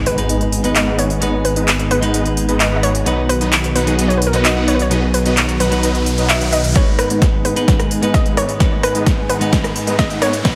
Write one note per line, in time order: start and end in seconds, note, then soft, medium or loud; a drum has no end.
0.00 3.04 G#1 medium
0.00 0.15 G#2 medium
0.00 6.72 D#3 medium
0.00 0.15 G#3 medium
0.00 3.03 G#3 medium
0.00 0.15 B3 medium
0.00 4.87 B3 medium
0.00 0.15 D#4 medium
0.00 3.03 G#4 medium
0.00 0.16 B4 loud
0.00 impact medium
0.06 0.26 G#3 medium
0.06 0.26 B3 medium
0.06 0.26 D#4 medium
0.06 0.26 B4 medium
0.06 0.78 B4 loud
0.06 0.26 F#5 loud
0.06 open hi-hat loud
0.17 0.61 G#2 medium
0.17 0.61 G#3 medium
0.17 0.61 B3 medium
0.17 0.61 D#4 medium
0.17 0.62 B4 medium
0.17 closed hi-hat soft
0.29 0.42 G#3 medium
0.29 0.42 B3 medium
0.29 0.42 D#4 medium
0.29 0.41 B4 medium
0.29 0.42 D#5 medium
0.29 closed hi-hat medium
0.41 closed hi-hat soft
0.52 open hi-hat loud
0.63 1.18 G#2 medium
0.63 1.19 G#3 medium
0.63 0.83 G#3 medium
0.63 1.19 B3 medium
0.63 0.83 B3 medium
0.63 0.83 D#4 medium
0.63 1.19 D#4 medium
0.63 0.83 B4 medium
0.63 1.20 B4 medium
0.63 0.83 D#5 medium
0.63 closed hi-hat medium
0.76 0.99 D#5 loud
0.76 clap loud
0.76 closed hi-hat medium
0.87 1.06 G#3 medium
0.87 1.06 B3 medium
0.87 1.06 D#4 medium
0.87 1.06 B4 medium
0.87 1.06 F#5 loud
0.99 1.46 C#5 loud
0.99 open hi-hat loud
1.10 open hi-hat medium
1.21 1.99 G#2 medium
1.21 1.99 G#3 medium
1.21 1.34 G#3 medium
1.21 2.00 B3 medium
1.21 1.34 B3 medium
1.21 1.34 D#4 medium
1.21 2.00 D#4 medium
1.21 1.34 B4 medium
1.21 2.00 B4 medium
1.21 1.34 D#5 medium
1.21 closed hi-hat medium
1.45 1.90 B4 medium
1.45 open hi-hat loud
1.56 1.68 G#3 loud
1.56 1.68 B3 medium
1.56 1.68 D#4 medium
1.56 1.68 B4 medium
1.56 1.68 D#5 loud
1.56 closed hi-hat medium
1.68 clap loud
1.68 closed hi-hat medium
1.79 closed hi-hat soft
1.91 2.10 G#3 medium
1.91 2.10 B3 medium
1.91 2.10 D#4 medium
1.91 2.56 B4 medium
1.91 2.10 B4 medium
1.91 2.10 F#5 loud
1.91 open hi-hat loud
2.01 3.03 G#2 medium
2.01 3.03 G#3 medium
2.01 3.04 B3 medium
2.01 3.04 D#4 medium
2.01 3.04 B4 loud
2.01 closed hi-hat medium
2.14 2.26 G#3 medium
2.14 2.26 B3 medium
2.14 2.26 D#4 medium
2.14 2.26 B4 medium
2.14 2.26 D#5 medium
2.14 closed hi-hat medium
2.26 closed hi-hat soft
2.37 open hi-hat loud
2.49 2.68 G#3 medium
2.49 2.68 B3 medium
2.49 2.68 D#4 medium
2.49 2.68 B4 medium
2.49 2.68 D#5 medium
2.49 closed hi-hat soft
2.60 2.67 D#5 loud
2.60 clap loud
2.60 closed hi-hat medium
2.72 2.91 G#3 medium
2.72 2.91 B3 medium
2.72 2.91 D#4 medium
2.72 2.91 B4 medium
2.72 2.91 F#5 loud
2.76 2.83 D#5 medium
2.83 3.31 C#5 loud
2.83 open hi-hat loud
2.95 closed hi-hat medium
3.05 6.73 B1 medium
3.05 3.84 B2 medium
3.05 3.84 F#3 medium
3.05 3.18 F#3 medium
3.05 6.72 F#3 medium
3.05 3.18 B3 medium
3.05 3.84 B3 medium
3.05 3.18 D#4 medium
3.05 3.85 D#4 medium
3.05 6.72 F#4 medium
3.05 3.18 B4 medium
3.05 3.85 B4 loud
3.05 3.18 D#5 medium
3.05 closed hi-hat medium
3.05 riser medium
3.29 3.74 B4 medium
3.29 open hi-hat loud
3.41 3.53 F#3 loud
3.41 3.53 B3 medium
3.41 3.53 D#4 medium
3.41 3.53 B4 medium
3.41 3.53 D#5 loud
3.41 closed hi-hat medium
3.53 clap loud
3.53 closed hi-hat medium
3.64 closed hi-hat soft
3.75 3.95 F#3 medium
3.75 3.95 B3 medium
3.75 3.95 D#4 medium
3.75 4.09 B4 medium
3.75 3.95 B4 medium
3.75 3.95 F#5 loud
3.75 open hi-hat loud
3.86 4.30 B2 medium
3.86 4.30 F#3 medium
3.86 4.31 B3 medium
3.86 4.31 D#4 medium
3.86 4.31 G#4 medium
3.86 closed hi-hat soft
3.99 4.11 F#3 medium
3.99 4.11 B3 medium
3.99 4.11 D#4 medium
3.99 4.11 B4 medium
3.99 4.11 D#5 medium
3.99 closed hi-hat medium
4.08 4.17 C#5 medium
4.08 closed hi-hat soft
4.18 4.27 B4 medium
4.22 open hi-hat loud
4.27 4.36 A#4 medium
4.32 4.88 B2 medium
4.32 4.88 F#3 medium
4.32 4.52 F#3 medium
4.32 4.88 B3 medium
4.32 4.52 B3 medium
4.32 4.52 D#4 medium
4.32 4.89 D#4 medium
4.32 4.52 B4 medium
4.32 4.89 B4 medium
4.32 4.45 B4 medium
4.32 4.52 D#5 medium
4.32 closed hi-hat soft
4.45 4.69 D#5 medium
4.45 clap loud
4.45 closed hi-hat medium
4.56 4.76 F#3 medium
4.56 4.76 B3 medium
4.56 4.76 D#4 medium
4.56 4.76 B4 medium
4.56 4.76 F#5 loud
4.68 4.75 C#5 medium
4.68 open hi-hat loud
4.75 4.82 B4 medium
4.79 5.15 C#5 medium
4.79 open hi-hat medium
4.90 5.68 B2 medium
4.90 5.69 F#3 medium
4.90 5.03 F#3 medium
4.90 5.03 B3 medium
4.90 5.69 B3 medium
4.90 5.03 D#4 medium
4.90 5.69 D#4 medium
4.90 5.70 G#4 medium
4.90 5.03 B4 medium
4.90 5.03 D#5 medium
4.90 closed hi-hat medium
5.14 5.59 B4 medium
5.14 open hi-hat loud
5.26 5.38 F#3 loud
5.26 5.38 B3 medium
5.26 5.38 D#4 medium
5.26 5.38 B4 medium
5.26 5.38 D#5 loud
5.26 closed hi-hat medium
5.37 clap loud
5.37 closed hi-hat medium
5.49 closed hi-hat soft
5.60 5.79 F#3 medium
5.60 5.79 B3 medium
5.60 5.79 D#4 medium
5.60 6.25 B4 medium
5.60 5.79 B4 medium
5.60 5.79 F#5 loud
5.60 open hi-hat loud
5.70 6.72 B2 medium
5.70 6.73 F#3 medium
5.70 6.73 B3 medium
5.70 6.73 D#4 medium
5.70 6.73 B4 loud
5.70 closed hi-hat soft
5.83 5.95 F#3 medium
5.83 5.95 B3 medium
5.83 5.95 D#4 medium
5.83 5.95 B4 medium
5.83 5.95 D#5 medium
5.83 closed hi-hat medium
5.95 closed hi-hat soft
6.06 open hi-hat loud
6.18 6.37 F#3 medium
6.18 6.37 B3 medium
6.18 6.37 D#4 medium
6.18 6.37 B4 medium
6.18 6.37 D#5 medium
6.18 closed hi-hat soft
6.29 6.53 E5 loud
6.29 clap loud
6.29 closed hi-hat medium
6.41 6.60 F#3 medium
6.41 6.60 B3 medium
6.41 6.60 D#4 medium
6.41 6.60 B4 medium
6.41 6.60 F#5 loud
6.41 closed hi-hat soft
6.52 6.74 D#5 loud
6.52 open hi-hat loud
6.64 closed hi-hat soft
6.74 7.53 G#2 medium
6.74 10.55 D#3 medium
6.74 7.53 G#3 medium
6.74 6.88 G#3 medium
6.74 10.41 G#3 medium
6.74 7.54 B3 medium
6.74 10.41 B3 medium
6.74 6.88 B3 medium
6.74 6.88 D#4 medium
6.74 7.54 D#4 medium
6.74 10.41 G#4 medium
6.74 6.88 B4 medium
6.74 7.54 B4 loud
6.74 6.99 C#5 loud
6.74 kick loud
6.74 snare soft
6.74 closed hi-hat medium
6.74 riser medium
6.99 7.42 B4 loud
6.99 cross-stick medium
6.99 open hi-hat loud
7.10 7.22 G#3 loud
7.10 7.22 B3 medium
7.10 7.22 D#4 medium
7.10 7.22 B4 medium
7.10 7.22 D#5 loud
7.10 closed hi-hat medium
7.22 kick loud
7.22 snare soft
7.22 closed hi-hat medium
7.45 7.64 G#3 medium
7.45 7.64 B3 medium
7.45 7.64 D#4 medium
7.45 8.10 B4 loud
7.45 7.64 B4 medium
7.45 7.64 F#5 loud
7.45 open hi-hat loud
7.56 8.00 G#2 medium
7.56 8.00 G#3 medium
7.56 8.00 B3 medium
7.56 8.00 D#4 medium
7.56 8.00 B4 medium
7.56 closed hi-hat medium
7.68 7.80 G#3 medium
7.68 7.80 B3 medium
7.68 7.80 B4 medium
7.68 kick loud
7.68 snare medium
7.68 closed hi-hat medium
7.80 cross-stick medium
7.80 closed hi-hat soft
7.91 open hi-hat loud
8.01 8.57 G#2 medium
8.01 8.57 G#3 medium
8.01 8.22 G#3 medium
8.01 8.57 B3 medium
8.01 8.22 B3 medium
8.01 8.22 D#4 medium
8.01 8.58 D#4 medium
8.01 8.22 B4 medium
8.01 8.58 B4 medium
8.01 8.22 D#5 medium
8.01 closed hi-hat medium
8.14 8.36 D#5 loud
8.14 kick loud
8.14 snare medium
8.14 closed hi-hat medium
8.26 8.45 G#3 loud
8.26 8.45 B3 medium
8.26 8.45 D#4 medium
8.26 8.45 B4 medium
8.26 8.45 F#5 loud
8.26 closed hi-hat soft
8.37 8.85 C#5 loud
8.37 cross-stick medium
8.37 open hi-hat loud
8.49 open hi-hat medium
8.59 9.38 G#2 medium
8.59 9.38 G#3 medium
8.59 8.72 G#3 medium
8.59 9.38 B3 medium
8.59 8.72 B3 medium
8.59 8.72 D#4 medium
8.59 9.39 D#4 medium
8.59 8.72 B4 medium
8.59 9.39 B4 medium
8.59 8.72 D#5 medium
8.59 kick loud
8.59 snare medium
8.59 closed hi-hat medium
8.83 9.28 B4 medium
8.83 cross-stick medium
8.83 open hi-hat loud
8.95 9.07 G#3 loud
8.95 9.07 B3 medium
8.95 9.07 D#4 medium
8.95 9.07 B4 medium
8.95 9.07 D#5 loud
8.95 closed hi-hat medium
9.06 kick loud
9.06 snare medium
9.06 closed hi-hat medium
9.29 9.49 G#3 loud
9.29 9.49 B3 medium
9.29 9.49 D#4 medium
9.29 9.95 B4 medium
9.29 9.49 B4 medium
9.29 9.49 F#5 loud
9.29 open hi-hat loud
9.40 10.42 G#2 medium
9.40 10.42 G#3 medium
9.40 10.42 B3 medium
9.40 10.42 D#4 medium
9.40 10.43 B4 loud
9.40 closed hi-hat medium
9.53 9.65 B3 medium
9.53 9.65 B4 medium
9.53 kick loud
9.53 snare medium
9.53 closed hi-hat medium
9.64 cross-stick medium
9.64 closed hi-hat soft
9.76 open hi-hat loud
9.87 10.06 G#3 medium
9.87 10.06 B3 medium
9.87 10.06 D#4 medium
9.87 10.06 B4 medium
9.87 10.06 D#5 loud
9.87 closed hi-hat medium
9.99 10.09 D#5 loud
9.99 kick loud
9.99 snare medium
9.99 closed hi-hat medium
10.10 10.29 G#3 loud
10.10 10.29 B3 medium
10.10 10.29 D#4 medium
10.10 10.29 B4 medium
10.10 10.29 F#5 loud
10.10 closed hi-hat soft
10.22 10.55 C#5 loud
10.22 cross-stick medium
10.22 open hi-hat loud
10.33 closed hi-hat medium
10.44 10.55 B2 medium
10.44 10.55 F#3 medium
10.44 10.55 B3 medium
10.44 10.55 D#4 medium
10.44 10.55 F#4 medium
10.44 10.55 B4 medium
10.44 10.55 B4 loud
10.44 10.55 D#5 medium
10.44 kick loud
10.44 snare medium
10.44 closed hi-hat medium